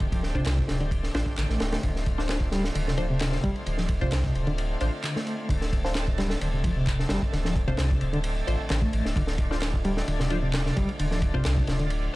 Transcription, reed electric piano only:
0.00 0.06 D3 medium
0.12 0.21 F3 medium
0.35 0.80 C3 medium
0.81 0.86 D3 medium
1.37 1.48 D3 medium
1.49 1.82 A3 medium
1.83 1.89 D3 medium
2.52 2.63 G3 medium
2.75 2.81 D3 medium
2.87 2.97 C3 medium
2.98 3.03 F3 medium
3.10 3.43 C3 medium
3.44 3.55 G3 medium
3.67 3.72 D3 medium
3.78 3.87 F3 medium
4.01 4.46 C3 medium
4.47 4.52 D3 loud
5.04 5.15 D3 medium
5.16 5.49 A3 medium
5.50 5.55 D3 medium
6.18 6.30 G3 loud
6.41 6.47 D3 medium
6.53 6.63 C3 medium
6.64 6.70 F3 medium
6.76 7.09 C3 medium
7.10 7.21 G3 medium
7.33 7.38 D3 medium
7.45 7.53 F3 medium
7.67 8.12 C3 medium
8.13 8.18 D3 loud
8.70 8.81 D3 medium
8.82 9.15 A3 medium
9.16 9.22 D3 medium
9.85 9.96 G3 medium
10.08 10.13 D3 medium
10.20 10.30 C3 medium
10.31 10.36 F3 medium
10.43 10.75 C3 medium
10.77 10.88 G3 medium
10.99 11.05 D3 medium
11.11 11.20 F3 medium
11.34 11.79 C3 loud
11.80 11.85 D3 loud

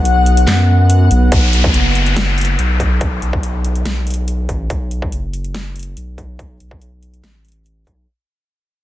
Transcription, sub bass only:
0.00 0.46 B1 loud
0.47 1.09 F#2 loud
1.11 1.30 B1 loud
1.32 1.73 B1 loud
1.74 2.57 F#1 loud
2.59 3.21 B1 medium
3.22 3.84 B1 medium
3.86 4.47 B1 medium
4.49 4.68 A1 loud
4.70 5.11 B1 loud
5.12 5.95 F#1 medium
5.97 6.59 B1 medium
6.60 7.22 B1 medium
7.24 7.85 A1 medium
7.87 8.07 B1 medium

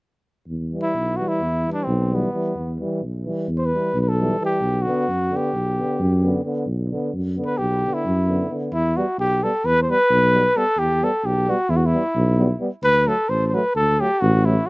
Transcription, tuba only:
0.47 0.73 E2 medium
0.94 1.20 B1 medium
1.40 1.66 E2 medium
1.87 2.24 B1 medium
2.55 2.80 E2 medium
3.02 3.27 B1 medium
3.48 3.73 E2 medium
3.94 4.31 B1 loud
4.60 4.86 B1 medium
5.07 5.33 F#2 medium
5.53 5.79 B1 medium
5.99 6.36 F#2 loud
6.66 6.91 B1 medium
7.13 7.38 F#2 medium
7.59 7.84 B1 medium
8.05 8.41 F#2 medium
8.71 8.97 E2 medium
9.17 9.43 B1 medium
9.64 9.90 E2 medium
10.10 10.47 B1 loud
10.77 11.02 E2 medium
11.24 11.49 B1 medium
11.69 11.94 E2 medium
12.15 12.52 B1 loud
12.82 13.08 D2 medium
13.28 13.54 A1 medium
13.75 14.00 D2 medium
14.22 14.59 A1 loud

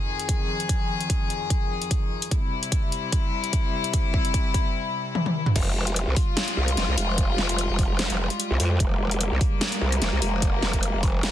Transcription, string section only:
0.00 2.28 F2 medium
0.00 2.28 D#3 medium
0.00 2.28 G#4 medium
2.31 5.52 C3 medium
2.31 5.52 G3 medium
2.31 5.52 E4 medium
5.56 11.31 G3 medium
5.56 11.31 G#3 medium
5.56 8.79 F4 medium
8.80 11.31 A#3 medium

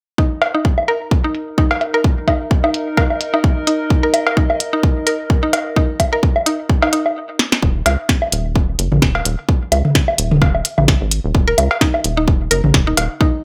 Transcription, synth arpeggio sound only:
0.18 0.24 D#4 medium
0.55 0.59 D#4 medium
0.88 0.94 A#4 loud
1.24 1.29 D#4 medium
1.58 1.63 D#4 medium
1.94 1.98 A#4 medium
2.28 2.33 D#4 medium
2.64 2.68 D#4 medium
2.97 3.03 A#4 loud
3.34 3.38 D#4 medium
3.67 3.73 D#4 medium
4.03 4.08 A#4 loud
4.37 4.42 D#4 medium
4.73 4.77 D#4 medium
5.07 5.12 A#4 loud
5.43 5.47 D#4 medium
5.76 5.82 D#4 medium
6.13 6.17 A#4 loud
6.46 6.52 D#4 medium
6.82 6.87 D#4 medium
6.93 7.01 D#4 medium
11.48 11.52 A#4 loud
11.81 11.87 D#4 medium
12.17 12.22 D#4 medium
12.51 12.56 A#4 loud
12.87 12.92 D#4 medium
13.21 13.26 D#4 medium

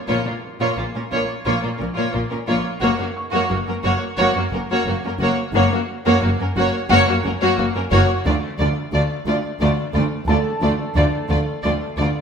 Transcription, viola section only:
0.10 0.25 A#3 soft
0.26 0.33 A#3 soft
0.61 0.77 A#3 soft
0.80 0.86 A#3 soft
0.96 1.03 A#3 soft
1.13 1.29 A#3 soft
1.47 1.62 A#3 medium
1.64 1.71 A#3 soft
1.82 1.88 A#3 soft
1.97 2.13 A#3 soft
2.14 2.21 A#3 soft
2.31 2.38 A#3 soft
2.48 2.64 A#3 soft
2.82 2.98 A#3 medium
2.99 3.06 A#3 soft
3.33 3.49 A#3 medium
3.51 3.58 A#3 soft
3.68 3.75 A#3 soft
3.85 4.01 A#3 medium
4.19 4.35 A#3 medium
4.37 4.43 A#3 soft
4.54 4.61 A#3 soft
4.71 4.86 A#3 medium
4.87 4.94 A#3 soft
5.05 5.12 A#3 soft
5.22 5.37 A#3 medium
5.54 5.70 A#3 medium
5.72 5.78 A#3 soft
6.06 6.22 A#3 medium
6.23 6.30 A#3 soft
6.41 6.47 A#3 soft
6.58 6.73 A#3 medium
6.91 7.06 A#3 medium
7.08 7.15 A#3 medium
7.25 7.32 A#3 medium
7.42 7.57 A#3 medium
7.58 7.65 A#3 medium
7.75 7.81 A#3 medium
7.92 8.08 A#3 medium
8.26 8.34 A3 medium
8.60 8.68 A3 medium
8.95 9.03 A3 medium
9.27 9.35 A3 soft
9.62 9.70 A3 medium
9.96 10.04 A3 medium
10.29 10.37 A3 medium
10.63 10.71 A3 medium
10.97 11.05 A3 medium
11.31 11.39 A3 soft
11.64 11.72 A3 medium
11.98 12.06 A3 soft

